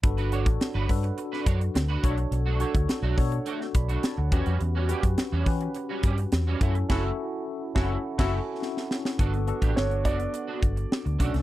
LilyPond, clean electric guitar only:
\new Staff \with { instrumentName = "Clean electric guitar" } { \time 4/4 \key g \lydian \tempo 4 = 105 r16 <d' fis' b'>16 <d' fis' cis''>16 r8 <d' fis' b'>16 r8. <d' fis' b'>16 <d' fis' cis''>16 r8 <d' fis' b'>16 <a d' fis'>16 r16 | r16 <a d' fis'>16 <a d' a'>16 r8 <a d' fis'>16 r8 <a d' fis'>16 r8 <a d' fis'>16 r8 <g cis' fis'>16 <g cis' fis'>16 | r16 <g cis' fis'>16 <g cis' g'>16 r8 <g cis' fis'>16 r8. <g cis' fis'>16 <g cis' g'>16 r8 <g cis' fis'>16 <a e' fis'>16 r16 | <a e' fis'>8 r4 <a e' fis'>8 r16 <a e' fis'>8 r4 r16 |
<b d' fis'>16 r8 <b d' g'>16 r8 <b d' fis'>16 r8 <b d' fis'>16 r4 <a d' fis'>16 r16 | }